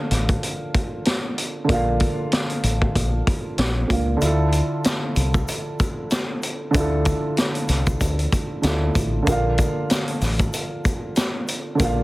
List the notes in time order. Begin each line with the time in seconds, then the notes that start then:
Already playing: D3 A#3 D4 F4 F5
0.11 A1, snare, closed hi-hat
0.29 kick, closed hi-hat
0.43 closed hi-hat
0.74 kick, closed hi-hat
1.05 snare, closed hi-hat
1.38 closed hi-hat
1.64 D3 A#3
1.69 A#1 D4 F4, kick, closed hi-hat
1.74 F5
2.00 kick, closed hi-hat
2.32 snare, closed hi-hat
2.50 closed hi-hat
2.63 A1, closed hi-hat
2.82 kick
2.95 A#1, kick, closed hi-hat
3.27 kick, closed hi-hat
3.58 A#1, snare, closed hi-hat
3.88 C#2 A#2 A#3 D4 F4, kick, closed hi-hat
3.92 F5
4.17 D3 D4
4.21 D2 E4 F4, closed hi-hat, shaker
4.26 A4
4.52 closed hi-hat, shaker
4.84 snare, closed hi-hat, shaker
5.16 C2, closed hi-hat, shaker
5.34 kick, shaker
5.48 closed hi-hat, shaker
5.80 kick, closed hi-hat, shaker
6.11 snare, closed hi-hat, shaker
6.43 closed hi-hat, shaker
6.71 D2 D3 D4, kick, closed hi-hat, shaker
6.75 E4 F4
6.80 A4
7.05 kick, closed hi-hat, shaker
7.37 snare, closed hi-hat, shaker
7.55 closed hi-hat
7.69 C2, snare, closed hi-hat, shaker
7.86 kick, closed hi-hat, shaker
8.01 D2, kick, closed hi-hat, shaker
8.19 closed hi-hat
8.32 kick, closed hi-hat, shaker
8.62 D2 D3 D4 E4 F4, snare, closed hi-hat, shaker
8.66 A4
8.95 A1, kick, closed hi-hat, shaker
9.22 D3 A#3
9.27 A#1 D4 F4, kick, closed hi-hat, shaker
9.32 F5
9.58 kick, closed hi-hat, shaker
9.90 snare, closed hi-hat, shaker
10.08 closed hi-hat
10.21 A1, snare, open hi-hat, shaker
10.39 kick, closed hi-hat, shaker
10.54 closed hi-hat, shaker
10.85 kick, closed hi-hat, shaker
11.16 snare, closed hi-hat, shaker
11.48 closed hi-hat, shaker
11.75 D3 A#3
11.80 A#1 D4 F4, kick, closed hi-hat, shaker
11.84 F5